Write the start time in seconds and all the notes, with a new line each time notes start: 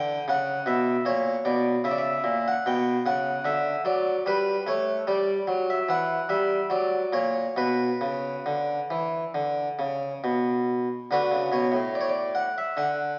Already playing: D3 G5
0.28 C#3 F#5
0.66 B2 E5
1.05 A#2 C#5
1.45 B2 D5
1.84 C#3 E5
1.91 D5
1.98 E5
2.24 A#2
2.48 F#5
2.66 B2 G5
3.06 C#3 F#5
3.45 D3 E5
3.85 F#3 D5
4.26 G3 B4
4.67 A3 C#5
5.07 G3 D5
5.48 F#3
5.70 E5
5.89 E3 F#5
6.29 G3 E5
6.70 F#3 D5
7.13 A#2 C#5
7.56 B2 B4
8.01 C#3
8.46 D3
8.90 E3
9.35 D3
9.79 C#3
10.24 B2
11.11 D3 D4 F#4 B4
11.31 C#3
11.52 B2 C#5
11.72 A2
11.95 D5
12.01 C#5
12.09 D5
12.35 F#5
12.58 E5
12.77 D3 F#5